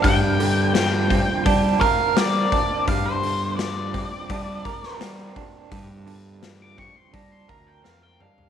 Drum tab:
HH |o-o-o-o-o-o-o-o-|o-o-o-o-o-o-o-o-|o-o-o-o-o-o-----|
SD |----o-------o---|----o------oo---|----o-------o---|
T2 |----------------|----------------|--------------o-|
FT |----------------|----------------|---------------o|
BD |o-----o-o-o---o-|o-----o-o-o---o-|o-----o-o-o-----|